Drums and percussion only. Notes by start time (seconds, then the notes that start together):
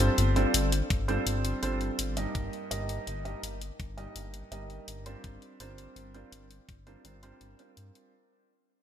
0.00 closed hi-hat
0.18 closed hi-hat
0.36 closed hi-hat
0.54 closed hi-hat
0.72 closed hi-hat
0.90 kick, closed hi-hat
1.09 closed hi-hat
1.27 closed hi-hat
1.45 closed hi-hat
1.63 closed hi-hat
1.81 closed hi-hat
1.99 closed hi-hat
2.17 closed hi-hat
2.35 kick, closed hi-hat
2.53 closed hi-hat
2.71 closed hi-hat
2.89 closed hi-hat
3.07 closed hi-hat
3.25 closed hi-hat
3.43 closed hi-hat
3.62 closed hi-hat
3.80 kick, closed hi-hat
3.98 closed hi-hat
4.16 closed hi-hat
4.34 closed hi-hat
4.52 closed hi-hat
4.70 closed hi-hat
4.88 closed hi-hat
5.06 closed hi-hat
5.24 kick, closed hi-hat
5.42 closed hi-hat
5.60 closed hi-hat
5.78 closed hi-hat
5.96 closed hi-hat
6.14 closed hi-hat
6.32 closed hi-hat
6.51 closed hi-hat
6.69 kick, closed hi-hat
6.87 closed hi-hat
7.05 closed hi-hat
7.23 closed hi-hat
7.41 closed hi-hat
7.59 closed hi-hat
7.77 closed hi-hat
7.95 closed hi-hat